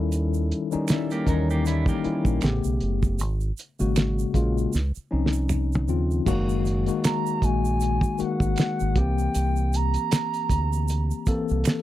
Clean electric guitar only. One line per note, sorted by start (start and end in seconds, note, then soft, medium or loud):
0.90 1.10 G3 medium
0.90 1.10 E4 soft
1.12 1.27 A#3 medium
1.12 1.27 G4 medium
1.29 1.49 C#4 medium
1.29 1.49 A#4 medium
1.51 1.66 A#3 medium
1.51 1.65 G4 medium
1.67 1.87 G3 medium
1.67 1.87 E4 medium
1.89 2.41 A#3 medium
1.89 2.40 G4 medium